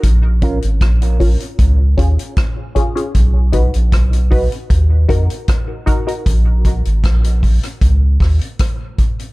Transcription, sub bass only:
\new Staff \with { instrumentName = "Sub bass" } { \clef bass \time 4/4 \key bes \phrygian \tempo 4 = 77 bes,,8. aes,,16 bes,,8. r16 des,8 ees,16 r4 r16 | b,,8. bes,,16 b,,8. r16 ees,8 f,16 r4 r16 | bes,,8. aes,,16 bes,,8. r16 des,8 ees,16 r4 r16 | }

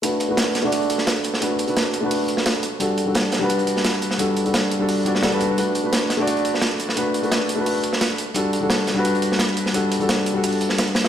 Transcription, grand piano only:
\new Staff \with { instrumentName = "Grand piano" } { \time 4/4 \key b \phrygian \tempo 4 = 173 <a d' fis' b'>8. <a d' fis' b'>4 <a d' fis' d''>2~ <a d' fis' d''>16 | <a d' fis' b'>8. <a d' fis' b'>4 <a d' fis' b'>4.~ <a d' fis' b'>16 r8 | <g d' fis' a'>8. <g d' fis' a'>4 <g d' fis' b'>2~ <g d' fis' b'>16 | <g d' fis' a'>8. <g d' fis' a'>4 <g d' fis' a'>8. <g d' fis' d''>8 <g d' fis' a'>16 <g d' fis' b'>8. |
<a d' fis' b'>8. <a d' fis' b'>4 <a d' fis' d''>2~ <a d' fis' d''>16 | <a d' fis' b'>8. <a d' fis' b'>4 <a d' fis' b'>4.~ <a d' fis' b'>16 r8 | <g d' fis' a'>8. <g d' fis' a'>4 <g d' fis' b'>2~ <g d' fis' b'>16 | <g d' fis' a'>8. <g d' fis' a'>4 <g d' fis' a'>2~ <g d' fis' a'>16 | }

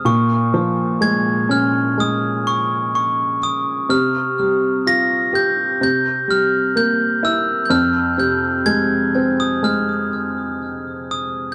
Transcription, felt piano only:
\new Staff \with { instrumentName = "Felt piano" } { \clef bass \time 4/4 \key f \minor \tempo 4 = 62 bes,8 f8 aes8 des'8 aes2 | c8 g8 f'8 g'8 c8 g8 bes8 e'8 | f,8 c8 aes8 c'8 aes2 | }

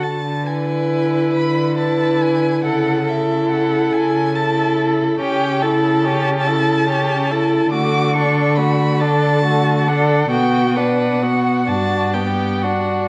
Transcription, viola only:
\new Staff \with { instrumentName = "Viola" } { \time 6/8 \key a \major \tempo 4. = 46 r8 e'4. e'4 | e'8 e'4. e'4 | \key d \major cis'8 e'8 cis'8 e'8 cis'8 e'8 | a8 d'8 a8 d'8 a8 d'8 |
b8 d'8 b8 d'8 b8 d'8 | }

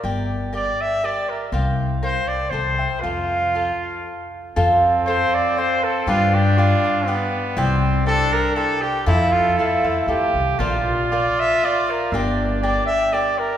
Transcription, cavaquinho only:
\new Staff \with { instrumentName = "Cavaquinho" } { \time 3/4 \key f \major \tempo 4 = 119 <g' bes' d'' g''>4 <g' bes' d'' g''>4 <g' bes' d'' g''>4 | <bes' c'' f'' g''>4 <bes' c'' f'' g''>4 <a' c'' e'' g''>8 <c'' e'' g''>8 | <f' a' c'' f''>4 <f' a' c'' f''>4 r4 | <f' a' c'' f''>4 <f' a' c'' f''>4 <f' a' c'' f''>4 |
<f' g' b' d''>4 <f' g' b' d''>8 <g' b' d''>8 <f' g' b' d''>4 | <e' g' c'' d''>4 <e' g' c'' d''>8 <g' c'' d''>8 <e' g' c'' d''>8 <g' c'' d''>8 | <f' a' c'' f''>4 <f' a' c'' f''>8 <a' c'' f''>8 <f' a' c'' f''>4 | <f' bes' c'' d''>4 <f' bes' c'' d''>4 <f' bes' c'' d''>8 <bes' c'' d''>8 |
<g' bes' d'' g''>4 <g' bes' d'' g''>8 <g' d'' g''>8 <g' bes' d'' g''>4 | }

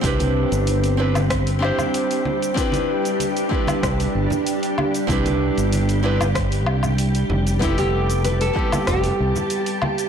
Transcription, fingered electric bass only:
\new Staff \with { instrumentName = "Fingered electric bass" } { \clef bass \time 4/4 \key c \major \tempo 4 = 95 c,8. g,,2 r4 r16 | r2 c,16 r16 g,,16 r4 r16 | c,8. g,,4.~ g,,16 c,4 f,,8~ | f,,4. r8 f,,16 r16 c,16 r4 r16 | }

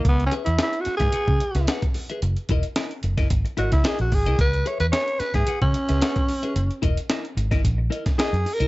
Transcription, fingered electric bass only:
\new Staff \with { instrumentName = "Fingered electric bass" } { \clef bass \time 4/4 \key cis \dorian \tempo 4 = 111 cis,8 r16 e,16 r8. gis,16 r16 cis16 r16 cis,16 r4 | fis,,16 r16 e,,16 r8. fis,,8 gis,,16 r16 gis,,16 cis,16 r16 ais,,16 gis,,16 bis,,16 | cis,8 r16 e,16 r8. gis,16 r16 cis16 r16 cis,16 r4 | fis,,16 r16 e,,16 r8. gis,,8 ais,,8 r8. fis,16 r16 bis,,16 | }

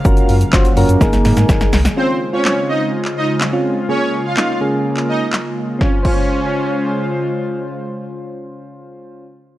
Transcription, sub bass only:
\new Staff \with { instrumentName = "Sub bass" } { \clef bass \time 4/4 \key des \major \tempo 4 = 125 ges,,8 ges,8 ges,,8 ges,16 ges,16 aes,,8 aes,16 aes,16 aes,,8 c,8 | r1 | r1 | r1 |
r1 | }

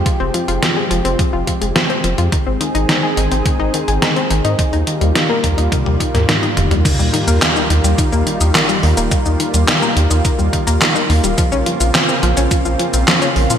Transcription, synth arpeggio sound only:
\new Staff \with { instrumentName = "Synth arpeggio sound" } { \clef bass \time 4/4 \key ees \mixolydian \tempo 4 = 106 f16 c'16 f16 f'16 f16 aes16 f16 c'16 f16 f'16 f16 aes16 f16 c'16 f16 f'16 | ees16 c'16 ees16 ees'16 ees16 aes'16 ees16 c'16 ees16 ees'16 ees16 aes'16 ees16 c'16 ees16 ees'16 | ees16 ees'16 ees16 g16 ees16 bes16 ees16 ees'16 ees16 g16 ees16 bes16 ees16 ees'16 ees16 g16 | ees16 g16 ees16 bes16 ees16 ees'16 ees16 g16 ees16 bes16 ees16 ees'16 ees16 g16 ees16 bes16 |
ees16 ees'16 ees16 g16 ees16 bes16 ees16 ees'16 ees16 g16 ees16 bes16 ees16 ees'16 ees16 g16 | f16 des'16 f16 f'16 f16 c'16 f16 des'16 f16 f'16 f16 c'16 f16 des'16 f16 f'16 | }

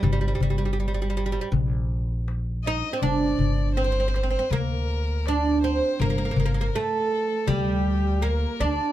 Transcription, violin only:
\new Staff \with { instrumentName = "Violin" } { \time 4/4 \tempo 4 = 81 r2. r8 ees''8 | d''4 c''8. c''16 bes'4 d''8 c''8 | bes'8. bes'16 a'4 g'4 bes'8 d''8 | }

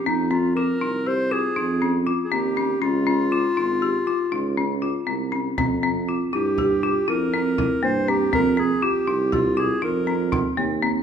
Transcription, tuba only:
\new Staff \with { instrumentName = "Tuba" } { \clef bass \time 11/8 \key f \minor \tempo 4 = 120 f,4. c,4. f,4. ees,4 | des,4. aes,,4 r8 des,4. c,4 | f,4. g,4. f,4. g,4 | f,4 r8 c,4. f,4. ees,4 | }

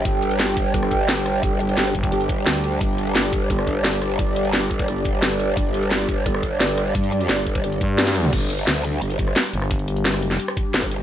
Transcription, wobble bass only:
\new Staff \with { instrumentName = "Wobble bass" } { \clef bass \time 4/4 \key c \dorian \tempo 4 = 174 g,,1 | g,,4 g,,8 r8 g,,4 d,4 | g,,1 | g,,1 |
g,,1 | g,4 g,,4. r4. | g,,4 d,4 g,,8 g,,8 r4 | r2. g,,4 | }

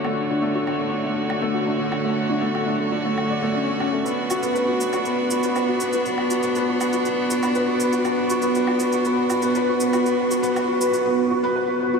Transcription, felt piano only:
\new Staff \with { instrumentName = "Felt piano" } { \time 4/4 \key b \minor \tempo 4 = 120 a16 r16 d'16 a16 fis'16 d'16 a16 d'16 a16 r16 d'16 a16 fis'16 d'16 a16 d'16 | a16 r16 d'16 a16 fis'16 d'16 a16 d'16 a16 r16 d''16 a16 cis'16 r16 cis'16 a16 | b16 r16 fis'16 b16 b'16 fis'16 b16 fis'16 b16 r16 fis'16 b16 b'16 fis'16 b16 fis'16 | b16 r16 fis'16 b16 b'16 fis'16 b16 fis'16 b16 r16 fis'16 b16 b'16 fis'16 b16 fis'16 |
b16 r16 fis'16 b16 b'16 fis'16 b16 fis'16 b16 r16 fis'16 b16 b'16 fis'16 b16 fis'16 | b16 r16 fis'16 b16 b'16 fis'16 b16 fis'16 b16 r16 fis'16 b16 b'16 fis'16 b16 fis'16 | }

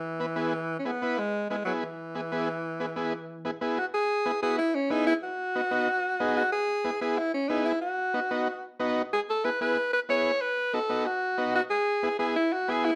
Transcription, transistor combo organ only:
\new Staff \with { instrumentName = "Transistor combo organ" } { \time 4/4 \key e \major \tempo 4 = 185 r8 <b e' b'>8 <b e' gis'>8 r4 <b e' gis'>8 <b e' b'>8 r8 | r8 <b e' gis'>8 <b e' gis'>8 r4 <b e' gis'>8 <b e' gis'>8 r8 | r8 <b e' gis'>8 <b e' gis'>8 r4 <b e' gis'>8 <b e' gis'>8 r8 | r4 <b e' gis'>8 <b e' fis'>8 r4 <b e' gis'>8 r8 |
r4 <b dis' fis'>8 <b dis' fis'>8 r4 <b dis' gis'>8 r8 | r4 <b e' gis'>8 <b e' gis'>8 r4 <b e' gis'>8 r8 | r4 <b dis' fis'>8 <b dis' fis'>8 r4 <b dis' fis'>8 r8 | r4 <b e' gis'>8 <b e' gis'>8 r4 <b e' gis'>8 r8 |
r4 <b dis' fis'>8 <b dis' fis'>8 r4 <b dis' fis'>8 r8 | r4 <b e' gis'>8 <b e' gis'>8 r4 <b e' gis'>8 r8 | }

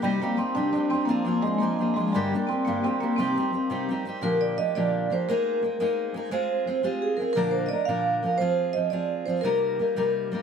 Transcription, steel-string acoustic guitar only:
\new Staff \with { instrumentName = "Steel-string acoustic guitar" } { \time 6/8 \key c \minor \tempo 4. = 115 <c g c' ees' g'>8 <g c' ees' g'>8 <g c' ees' g'>8 <c g c' ees' g'>8 <g c' ees' g'>8 <g c' ees' g'>8 | <f c' f' aes'>8 <f c' f' aes'>8 <f c' f' aes'>8 <f c' f' aes'>8 <f c' f' aes'>8 <f c' f' aes'>8 | <g, d g bes d' g'>8 <g bes d' g'>8 <g bes d' g'>8 <g, d g bes d' g'>8 <g bes d' g'>8 <g bes d' g'>8 | <c g c' ees' g'>8 <g c' ees' g'>8 <g c' ees' g'>8 <c g c' ees' g'>8 <g c' ees' g'>8 <g c' ees' g'>8 |
<bes, d f bes d' g'>4 <f bes d' g'>8 <bes, d f bes d' g'>4 <f bes d' g'>8 | <aes bes ees' aes'>4 <aes bes ees' aes'>8 <aes bes ees' aes'>4 <aes bes ees' aes'>8 | <aes c' f' aes'>4 <aes c' f' aes'>8 <aes c' f' aes'>4 <aes c' f' aes'>8 | <bes, d f bes d' bes'>4 <f bes d' bes'>8 <bes, d f bes d' bes'>4 <f bes d' bes'>8 |
<f c' f' aes'>4 <f c' f' aes'>8 <f c' f' aes'>4 <f c' f' aes'>8 | <c g bes ees' bes'>4 <g bes ees' bes'>8 <c g bes ees' bes'>4 <g bes ees' bes'>8 | }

